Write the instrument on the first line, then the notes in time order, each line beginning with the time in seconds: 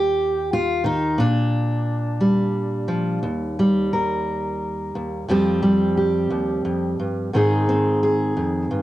steel-string acoustic guitar
Already playing: D#2 G4
0.53 F4
0.84 D#3 D#4
1.18 A#2 D4
2.21 G3
2.88 F3
3.23 D#2
3.59 G3
3.93 A#4
4.95 D#2
5.28 F2 F3 G3 C4 G4
5.63 G3
5.97 G4
6.30 D#2
6.65 F2
7.00 G2
7.33 G#2 D#3 C4 D#4 G#4
7.69 C4
8.03 G#4
8.37 F2
8.71 G2